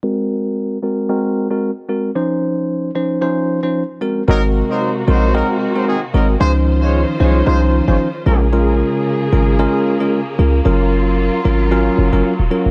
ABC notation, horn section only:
X:1
M:4/4
L:1/16
Q:"Swing 16ths" 1/4=113
K:Abmix
V:1 name="Horn section"
z16 | z16 | [G,EB] z2 [G,Ec]2 z [G,Ec]2 [G,EB] z2 [G,Ec] [E,CA] z [G,EB] z | [A,Fc] z2 [A,Fd]2 z [A,Fd]2 [A,Fc] z2 [A,Fd] z2 [F,DB] z |
z16 | z16 |]